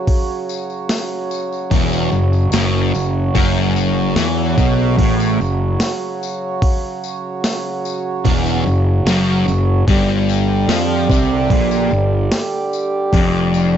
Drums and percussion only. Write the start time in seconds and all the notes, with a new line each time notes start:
0.07 kick, open hi-hat
0.49 tambourine
0.70 tambourine
0.89 snare, open hi-hat, tambourine
1.31 tambourine
1.52 tambourine
1.71 kick, open hi-hat, tambourine
1.93 tambourine
2.12 tambourine
2.33 tambourine
2.52 snare, open hi-hat, tambourine
2.94 tambourine
3.35 kick, open hi-hat
3.76 tambourine
4.16 snare, open hi-hat, tambourine
4.58 kick, tambourine
4.99 kick, open hi-hat
5.20 tambourine
5.41 tambourine
5.80 snare, open hi-hat, tambourine
6.23 tambourine
6.62 kick, open hi-hat
7.04 tambourine
7.44 snare, open hi-hat, tambourine
7.85 tambourine
8.25 kick, open hi-hat
8.46 tambourine
8.67 tambourine
9.07 snare, open hi-hat, tambourine
9.48 tambourine
9.88 kick, open hi-hat
10.29 tambourine
10.69 snare, open hi-hat, tambourine
11.10 kick, tambourine
11.50 kick, open hi-hat
11.71 tambourine
11.91 tambourine
12.32 snare, open hi-hat, tambourine
12.73 tambourine
13.13 kick, open hi-hat, tambourine
13.33 tambourine
13.54 tambourine